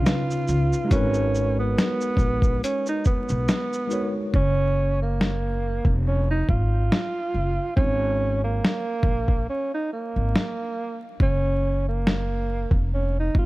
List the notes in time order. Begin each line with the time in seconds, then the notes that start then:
Already playing: F4
0.01 C#3 C#4 D#4 F4
0.06 B4, snare, closed hi-hat, shaker
0.31 shaker
0.48 C#2, shaker
0.73 shaker
0.85 G#3 D#4
0.90 G#1 C#4 F#4 A#4, kick, closed hi-hat, shaker
0.95 B4
1.14 shaker
1.35 shaker
1.59 B3
1.78 snare, closed hi-hat, shaker
2.01 shaker
2.17 A#1, kick, shaker
2.42 kick, shaker
2.64 C#4, closed hi-hat, shaker
2.86 D#4, shaker
3.05 B3, kick, shaker
3.29 B1, shaker
3.49 snare, closed hi-hat, shaker
3.73 shaker
3.87 G#3 D#4 F#4, shaker
3.92 A#4 C#5
4.34 F#1 C#4, kick
5.02 A#3
5.21 snare
5.85 F1, kick
6.07 C#4
6.31 D#4
6.49 G#1 F4, kick
6.92 snare
7.34 F#1
7.76 G#1 C#4, kick
8.44 A#3
8.65 snare
9.03 A#1, kick
9.28 kick
9.49 C#4
9.74 D#4
9.93 A#3
10.16 G#1
10.36 snare
11.20 F#1 C#4, kick
11.89 A#3
12.07 snare
12.71 F1, kick
12.94 C#4
13.20 D#4
13.35 G#1 F4, kick